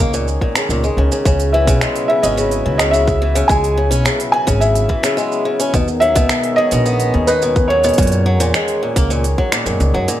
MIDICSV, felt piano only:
0, 0, Header, 1, 2, 480
1, 0, Start_track
1, 0, Tempo, 560748
1, 1073, Time_signature, 4, 2, 24, 8
1, 8731, End_track
2, 0, Start_track
2, 0, Title_t, "Felt piano"
2, 0, Program_c, 0, 0
2, 1305, Note_on_c, 0, 76, 74
2, 1755, Note_off_c, 0, 76, 0
2, 1780, Note_on_c, 0, 76, 82
2, 1905, Note_on_c, 0, 75, 77
2, 1910, Note_off_c, 0, 76, 0
2, 2364, Note_off_c, 0, 75, 0
2, 2377, Note_on_c, 0, 75, 74
2, 2490, Note_on_c, 0, 76, 91
2, 2509, Note_off_c, 0, 75, 0
2, 2977, Note_on_c, 0, 80, 91
2, 2996, Note_off_c, 0, 76, 0
2, 3431, Note_off_c, 0, 80, 0
2, 3698, Note_on_c, 0, 80, 104
2, 3941, Note_on_c, 0, 76, 90
2, 3953, Note_off_c, 0, 80, 0
2, 4633, Note_off_c, 0, 76, 0
2, 5137, Note_on_c, 0, 76, 106
2, 5591, Note_off_c, 0, 76, 0
2, 5615, Note_on_c, 0, 75, 110
2, 6224, Note_on_c, 0, 71, 78
2, 6242, Note_off_c, 0, 75, 0
2, 6563, Note_off_c, 0, 71, 0
2, 6572, Note_on_c, 0, 73, 83
2, 8228, Note_off_c, 0, 73, 0
2, 8731, End_track
0, 0, End_of_file